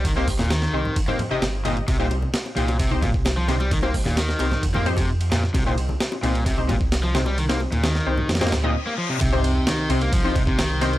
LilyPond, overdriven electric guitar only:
\new Staff \with { instrumentName = "Overdriven electric guitar" } { \clef bass \time 4/4 \key c \minor \tempo 4 = 131 ees16 bes16 r16 bes,16 ees4 r16 bes16 r16 c16 r8 bes,16 r16 | c16 bes,16 r4 bes,8 c16 r16 bes,16 r8 f16 c16 g16 | ees16 bes16 r16 bes,16 ees4 r16 bes16 r16 c16 r8 bes,16 r16 | c16 bes,16 r4 bes,8 c16 r16 bes,16 r8 f16 c16 g16 |
ees16 bes16 r16 bes,16 ees4 r16 bes16 r16 bes,16 r16 bes16 f16 c16 | c4 ees8 c16 bes16 f8 c16 c16 ees4 | }